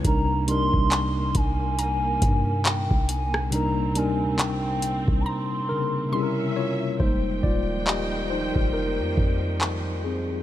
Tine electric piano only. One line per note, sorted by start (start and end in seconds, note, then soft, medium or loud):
0.03 0.42 C3 medium
0.03 0.43 G3 medium
0.03 0.43 D4 medium
0.03 0.44 D#4 medium
0.08 0.44 A#4 medium
0.47 1.99 C3 medium
0.47 2.00 G3 medium
0.47 2.00 D4 medium
0.47 2.01 D#4 medium
0.51 2.01 A#4 medium
3.51 3.90 C3 medium
3.51 3.90 G3 medium
3.51 3.91 D4 medium
3.51 3.91 D#4 medium
3.55 3.92 A#4 medium
3.94 5.47 C3 medium
3.94 5.47 G3 medium
3.94 5.48 D4 medium
3.94 5.48 D#4 medium
3.99 5.49 A#4 medium
5.69 6.53 C#3 medium
5.69 6.22 A#4 medium
6.12 6.89 C3 medium
6.12 6.89 G3 medium
6.12 6.90 C#4 medium
6.12 6.91 E4 medium
6.16 6.22 G#4 medium
6.23 6.94 A#4 medium
6.56 6.78 F4 medium
6.56 6.76 C#5 loud
7.00 8.27 G3 medium
7.00 8.27 G#3 soft
7.00 8.27 A#3 soft
7.00 7.42 D#4 medium
7.00 7.45 C5 loud
7.43 7.85 F4 medium
7.43 7.88 D5 loud
7.87 8.29 G4 medium
7.87 8.27 D#5 medium
8.30 8.72 D#4 medium
8.30 8.75 C5 loud
8.73 10.01 D#4 medium
8.73 10.00 A#4 medium
10.04 10.43 C4 medium
10.04 10.43 G#4 medium